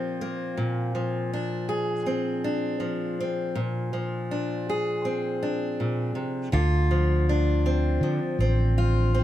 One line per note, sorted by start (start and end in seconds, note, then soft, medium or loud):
0.00 0.57 A#2 medium
0.00 0.94 F3 soft
0.00 0.21 A#3 soft
0.00 1.33 C4 soft
0.00 0.54 G4 soft
0.21 1.72 A#3 soft
0.57 3.54 A#2 medium
0.95 2.79 F3 soft
1.33 2.44 D4 soft
1.69 3.51 G#4 soft
2.06 3.20 C4 soft
2.44 4.31 D4 soft
2.80 3.93 F3 soft
3.20 3.58 C4 soft
3.55 5.78 A#2 medium
3.93 6.48 F3 soft
4.31 5.41 D4 soft
4.69 6.49 G#4 soft
5.05 6.49 C4 soft
5.43 6.49 D4 soft
5.80 6.15 A#2 soft
6.15 6.52 C3 soft
6.52 7.97 D2 medium
6.52 9.24 D3 medium
6.52 8.77 F4 medium
6.91 8.03 F3 soft
7.29 9.24 D4 soft
7.66 8.40 C4 soft
8.01 8.19 D3 medium
8.01 9.24 F3 soft
8.39 9.24 A1 medium
8.39 9.14 C4 soft
8.78 9.24 F4 soft
9.14 9.24 C4 soft